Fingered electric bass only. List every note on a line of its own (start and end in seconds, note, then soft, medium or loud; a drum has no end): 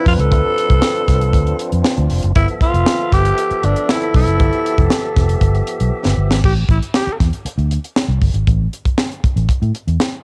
0.06 0.15 F2 medium
0.18 0.32 C#2 loud
0.32 0.41 D2 loud
0.70 0.79 C2 medium
1.08 1.33 C2 medium
1.33 1.52 D2 medium
1.72 1.82 F2 medium
1.98 2.07 D2 medium
2.11 2.20 F1 medium
2.24 2.33 F#1 loud
2.36 2.45 G1 loud
2.74 2.83 F1 medium
3.13 3.31 G1 medium
3.51 muted fingered electric bass stroke medium
3.64 3.73 G1 loud
4.15 4.24 B1 medium
4.27 4.40 F#1 medium
4.40 4.49 G1 loud
4.78 4.88 F1 medium
5.17 5.35 F1 medium
5.41 5.60 G1 medium
5.81 5.90 B1 medium
6.05 6.15 G1 medium
6.17 6.31 G1 medium
6.31 6.40 G#1 medium
6.44 6.63 A1 loud
6.69 6.78 A1 loud
7.07 muted fingered electric bass stroke soft
7.20 7.30 E2 medium
7.45 muted fingered electric bass stroke soft
7.58 7.77 D2 medium
8.08 8.18 C2 medium
8.22 8.31 G1 medium
8.34 8.43 G#1 medium
8.47 8.66 A1 loud
8.85 muted fingered electric bass stroke soft
9.24 muted fingered electric bass stroke soft
9.36 9.45 A1 medium
9.62 9.71 A2 medium
9.87 9.97 E2 medium